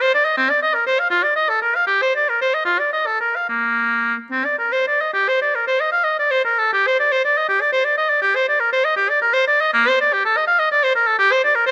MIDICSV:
0, 0, Header, 1, 2, 480
1, 0, Start_track
1, 0, Key_signature, -2, "major"
1, 0, Tempo, 487013
1, 360, Time_signature, 6, 3, 24, 8
1, 1323, Tempo, 530035
1, 2763, Tempo, 554529
1, 4683, Key_signature, -2, "minor"
1, 4683, Tempo, 520833
1, 6603, Tempo, 491803
1, 8523, Tempo, 514580
1, 9483, Tempo, 476948
1, 10977, End_track
2, 0, Start_track
2, 0, Title_t, "Oboe"
2, 0, Program_c, 0, 68
2, 10, Note_on_c, 0, 72, 59
2, 125, Note_off_c, 0, 72, 0
2, 137, Note_on_c, 0, 74, 62
2, 244, Note_on_c, 0, 75, 57
2, 259, Note_off_c, 0, 74, 0
2, 362, Note_off_c, 0, 75, 0
2, 367, Note_on_c, 0, 60, 73
2, 491, Note_on_c, 0, 74, 55
2, 505, Note_off_c, 0, 60, 0
2, 604, Note_off_c, 0, 74, 0
2, 615, Note_on_c, 0, 75, 57
2, 728, Note_on_c, 0, 70, 52
2, 742, Note_off_c, 0, 75, 0
2, 842, Note_off_c, 0, 70, 0
2, 853, Note_on_c, 0, 72, 56
2, 976, Note_on_c, 0, 77, 58
2, 991, Note_off_c, 0, 72, 0
2, 1078, Note_off_c, 0, 77, 0
2, 1084, Note_on_c, 0, 65, 69
2, 1215, Note_on_c, 0, 74, 51
2, 1230, Note_off_c, 0, 65, 0
2, 1330, Note_off_c, 0, 74, 0
2, 1336, Note_on_c, 0, 75, 57
2, 1457, Note_on_c, 0, 69, 52
2, 1470, Note_off_c, 0, 75, 0
2, 1565, Note_off_c, 0, 69, 0
2, 1571, Note_on_c, 0, 70, 55
2, 1695, Note_on_c, 0, 77, 56
2, 1709, Note_off_c, 0, 70, 0
2, 1792, Note_off_c, 0, 77, 0
2, 1797, Note_on_c, 0, 67, 66
2, 1936, Note_on_c, 0, 72, 53
2, 1949, Note_off_c, 0, 67, 0
2, 2046, Note_off_c, 0, 72, 0
2, 2051, Note_on_c, 0, 74, 51
2, 2178, Note_on_c, 0, 70, 49
2, 2192, Note_off_c, 0, 74, 0
2, 2287, Note_off_c, 0, 70, 0
2, 2293, Note_on_c, 0, 72, 45
2, 2408, Note_on_c, 0, 75, 44
2, 2421, Note_off_c, 0, 72, 0
2, 2501, Note_off_c, 0, 75, 0
2, 2506, Note_on_c, 0, 65, 62
2, 2634, Note_on_c, 0, 74, 47
2, 2647, Note_off_c, 0, 65, 0
2, 2754, Note_off_c, 0, 74, 0
2, 2759, Note_on_c, 0, 75, 45
2, 2875, Note_on_c, 0, 69, 42
2, 2888, Note_off_c, 0, 75, 0
2, 2994, Note_off_c, 0, 69, 0
2, 2999, Note_on_c, 0, 70, 49
2, 3128, Note_on_c, 0, 77, 44
2, 3141, Note_off_c, 0, 70, 0
2, 3240, Note_off_c, 0, 77, 0
2, 3246, Note_on_c, 0, 58, 50
2, 3811, Note_off_c, 0, 58, 0
2, 3958, Note_on_c, 0, 60, 45
2, 4073, Note_on_c, 0, 74, 37
2, 4086, Note_off_c, 0, 60, 0
2, 4187, Note_off_c, 0, 74, 0
2, 4193, Note_on_c, 0, 70, 39
2, 4312, Note_on_c, 0, 72, 41
2, 4325, Note_off_c, 0, 70, 0
2, 4435, Note_off_c, 0, 72, 0
2, 4441, Note_on_c, 0, 74, 45
2, 4560, Note_on_c, 0, 75, 39
2, 4573, Note_off_c, 0, 74, 0
2, 4664, Note_off_c, 0, 75, 0
2, 4669, Note_on_c, 0, 67, 62
2, 4803, Note_on_c, 0, 72, 52
2, 4817, Note_off_c, 0, 67, 0
2, 4918, Note_off_c, 0, 72, 0
2, 4927, Note_on_c, 0, 74, 46
2, 5051, Note_on_c, 0, 70, 45
2, 5064, Note_off_c, 0, 74, 0
2, 5159, Note_off_c, 0, 70, 0
2, 5165, Note_on_c, 0, 72, 49
2, 5285, Note_on_c, 0, 75, 48
2, 5299, Note_off_c, 0, 72, 0
2, 5386, Note_off_c, 0, 75, 0
2, 5392, Note_on_c, 0, 77, 62
2, 5502, Note_on_c, 0, 75, 51
2, 5516, Note_off_c, 0, 77, 0
2, 5626, Note_off_c, 0, 75, 0
2, 5640, Note_on_c, 0, 74, 50
2, 5751, Note_on_c, 0, 72, 48
2, 5765, Note_off_c, 0, 74, 0
2, 5871, Note_off_c, 0, 72, 0
2, 5876, Note_on_c, 0, 70, 53
2, 6006, Note_on_c, 0, 69, 52
2, 6020, Note_off_c, 0, 70, 0
2, 6130, Note_off_c, 0, 69, 0
2, 6137, Note_on_c, 0, 67, 62
2, 6266, Note_on_c, 0, 72, 52
2, 6280, Note_off_c, 0, 67, 0
2, 6378, Note_off_c, 0, 72, 0
2, 6382, Note_on_c, 0, 74, 49
2, 6495, Note_on_c, 0, 72, 47
2, 6509, Note_off_c, 0, 74, 0
2, 6606, Note_off_c, 0, 72, 0
2, 6616, Note_on_c, 0, 74, 52
2, 6741, Note_on_c, 0, 75, 50
2, 6755, Note_off_c, 0, 74, 0
2, 6844, Note_off_c, 0, 75, 0
2, 6849, Note_on_c, 0, 67, 62
2, 6969, Note_on_c, 0, 74, 51
2, 6983, Note_off_c, 0, 67, 0
2, 7074, Note_off_c, 0, 74, 0
2, 7080, Note_on_c, 0, 72, 50
2, 7197, Note_on_c, 0, 74, 48
2, 7212, Note_off_c, 0, 72, 0
2, 7316, Note_off_c, 0, 74, 0
2, 7326, Note_on_c, 0, 75, 56
2, 7443, Note_on_c, 0, 74, 51
2, 7458, Note_off_c, 0, 75, 0
2, 7557, Note_off_c, 0, 74, 0
2, 7563, Note_on_c, 0, 67, 67
2, 7695, Note_on_c, 0, 72, 52
2, 7709, Note_off_c, 0, 67, 0
2, 7809, Note_off_c, 0, 72, 0
2, 7821, Note_on_c, 0, 74, 53
2, 7934, Note_on_c, 0, 70, 53
2, 7949, Note_off_c, 0, 74, 0
2, 8048, Note_off_c, 0, 70, 0
2, 8057, Note_on_c, 0, 72, 51
2, 8176, Note_on_c, 0, 75, 55
2, 8190, Note_off_c, 0, 72, 0
2, 8282, Note_off_c, 0, 75, 0
2, 8288, Note_on_c, 0, 67, 61
2, 8417, Note_on_c, 0, 74, 47
2, 8431, Note_off_c, 0, 67, 0
2, 8530, Note_off_c, 0, 74, 0
2, 8537, Note_on_c, 0, 70, 56
2, 8645, Note_on_c, 0, 72, 55
2, 8659, Note_off_c, 0, 70, 0
2, 8767, Note_off_c, 0, 72, 0
2, 8778, Note_on_c, 0, 74, 57
2, 8901, Note_on_c, 0, 75, 60
2, 8915, Note_off_c, 0, 74, 0
2, 9010, Note_off_c, 0, 75, 0
2, 9015, Note_on_c, 0, 58, 74
2, 9153, Note_on_c, 0, 72, 55
2, 9167, Note_off_c, 0, 58, 0
2, 9262, Note_off_c, 0, 72, 0
2, 9273, Note_on_c, 0, 74, 59
2, 9388, Note_on_c, 0, 67, 57
2, 9402, Note_off_c, 0, 74, 0
2, 9492, Note_off_c, 0, 67, 0
2, 9502, Note_on_c, 0, 69, 58
2, 9622, Note_on_c, 0, 75, 59
2, 9637, Note_off_c, 0, 69, 0
2, 9721, Note_off_c, 0, 75, 0
2, 9727, Note_on_c, 0, 77, 72
2, 9846, Note_on_c, 0, 75, 58
2, 9861, Note_off_c, 0, 77, 0
2, 9965, Note_off_c, 0, 75, 0
2, 9971, Note_on_c, 0, 74, 66
2, 10090, Note_on_c, 0, 72, 57
2, 10105, Note_off_c, 0, 74, 0
2, 10202, Note_off_c, 0, 72, 0
2, 10208, Note_on_c, 0, 70, 69
2, 10326, Note_on_c, 0, 69, 58
2, 10341, Note_off_c, 0, 70, 0
2, 10439, Note_off_c, 0, 69, 0
2, 10445, Note_on_c, 0, 67, 83
2, 10577, Note_on_c, 0, 72, 62
2, 10592, Note_off_c, 0, 67, 0
2, 10690, Note_off_c, 0, 72, 0
2, 10699, Note_on_c, 0, 74, 68
2, 10811, Note_on_c, 0, 70, 60
2, 10826, Note_off_c, 0, 74, 0
2, 10916, Note_off_c, 0, 70, 0
2, 10922, Note_on_c, 0, 72, 63
2, 10977, Note_off_c, 0, 72, 0
2, 10977, End_track
0, 0, End_of_file